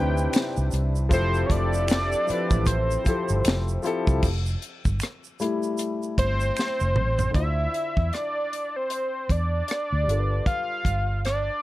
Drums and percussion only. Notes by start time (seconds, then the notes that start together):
0.17 shaker
0.33 finger snap, snare, closed hi-hat, shaker
0.57 shaker
0.71 closed hi-hat, shaker
0.96 shaker
1.11 kick, closed hi-hat, shaker
1.34 shaker
1.50 kick, closed hi-hat
1.73 shaker
1.88 finger snap, snare, closed hi-hat, shaker
2.12 shaker
2.28 closed hi-hat, shaker
2.51 kick, shaker
2.66 kick, closed hi-hat, shaker
2.91 shaker
3.06 kick, closed hi-hat, shaker
3.29 shaker
3.45 finger snap, snare, closed hi-hat, shaker
3.68 shaker
3.83 closed hi-hat, shaker
4.07 kick, shaker
4.23 kick, crash, shaker
4.46 shaker
4.62 closed hi-hat
4.85 kick, shaker
5.00 finger snap, cross-stick, closed hi-hat, shaker
5.24 shaker
5.40 closed hi-hat, shaker
5.63 shaker
5.78 closed hi-hat, shaker
6.03 shaker
6.18 kick, closed hi-hat
6.40 shaker
6.57 finger snap, snare, shaker
6.80 shaker
6.96 mid tom
7.19 floor tom, shaker
7.34 kick, closed hi-hat
7.74 closed hi-hat
7.97 kick
8.13 cross-stick, closed hi-hat
8.53 closed hi-hat
8.90 closed hi-hat
9.29 kick, closed hi-hat
9.68 cross-stick, closed hi-hat
10.09 closed hi-hat
10.46 kick, closed hi-hat
10.85 kick, closed hi-hat
11.25 cross-stick, closed hi-hat